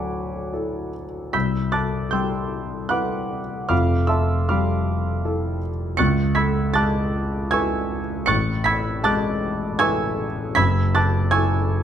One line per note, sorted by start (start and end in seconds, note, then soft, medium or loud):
0.00 1.30 D2 soft
0.00 1.02 F#3 soft
0.00 1.36 C#5 medium
0.00 1.36 D5 medium
0.00 1.37 F#5 medium
0.00 1.36 G#5 medium
0.00 1.37 A5 soft
0.00 1.33 B5 medium
0.00 1.36 C#6 medium
0.00 1.37 D6 medium
0.53 1.30 E4 soft
0.53 1.30 A4 soft
1.33 3.67 C2 soft
1.33 1.71 B5 medium
1.33 1.71 E6 medium
1.33 1.71 G6 medium
1.33 1.73 B6 medium
1.72 2.10 A5 medium
1.72 2.09 D6 medium
1.72 2.09 F#6 medium
1.72 2.12 A6 medium
2.11 3.39 G3 soft
2.11 2.88 G5 medium
2.11 2.88 C6 medium
2.11 2.88 E6 medium
2.11 2.91 G6 medium
2.89 3.67 E4 soft
2.89 3.68 B4 soft
2.89 3.67 F#5 medium
2.89 3.66 B5 medium
2.89 3.67 D6 medium
2.89 3.70 F#6 medium
3.69 5.95 F1 medium
3.69 5.95 F2 medium
3.69 4.07 F5 medium
3.69 4.07 B5 medium
3.69 4.07 D6 medium
3.69 4.10 F6 medium
4.07 4.46 E5 medium
4.07 4.46 A5 medium
4.07 4.46 C6 medium
4.07 4.48 E6 medium
4.49 5.70 G3 soft
4.49 5.58 F5 medium
4.49 5.58 B5 medium
4.49 5.58 D6 medium
4.49 5.62 F6 medium
5.25 5.96 E4 soft
5.25 5.96 A4 medium
5.97 8.25 C#2 medium
5.97 6.35 C#6 medium
5.97 6.35 F#6 medium
5.97 6.35 A6 medium
5.97 6.37 C#7 loud
6.35 6.73 B5 medium
6.35 6.73 E6 medium
6.35 6.72 G#6 medium
6.35 6.75 B6 medium
6.74 7.99 G#3 soft
6.74 7.49 A5 medium
6.74 7.49 D6 medium
6.74 7.49 F#6 medium
6.74 7.52 A6 medium
7.51 8.25 E4 soft
7.51 8.25 B4 medium
7.51 8.25 G#5 medium
7.51 8.25 C#6 medium
7.51 8.24 E6 medium
7.51 8.28 G#6 loud
8.26 10.52 A1 medium
8.26 8.64 C#6 medium
8.26 8.64 F#6 medium
8.26 8.64 A6 medium
8.26 8.66 C#7 loud
8.64 9.02 B5 medium
8.64 9.02 E6 medium
8.64 9.02 G#6 medium
8.64 9.04 B6 loud
9.04 10.26 G#3 medium
9.04 9.76 A5 medium
9.04 9.76 D6 medium
9.04 9.77 F#6 medium
9.04 9.80 A6 loud
9.79 10.53 E4 medium
9.79 10.53 B4 medium
9.79 10.52 G#5 medium
9.79 10.52 C#6 medium
9.79 10.52 E6 medium
9.79 10.54 G#6 loud
10.55 11.83 F#1 medium
10.55 10.92 B5 medium
10.55 10.92 E6 medium
10.55 10.91 G#6 medium
10.55 10.94 B6 loud
10.95 11.30 A5 medium
10.95 11.30 D6 medium
10.95 11.30 F#6 medium
10.95 11.32 A6 medium
11.31 11.83 E4 medium
11.31 11.83 A4 medium
11.31 11.83 G#5 medium
11.31 11.83 C#6 medium
11.31 11.83 E6 medium
11.31 11.83 G#6 loud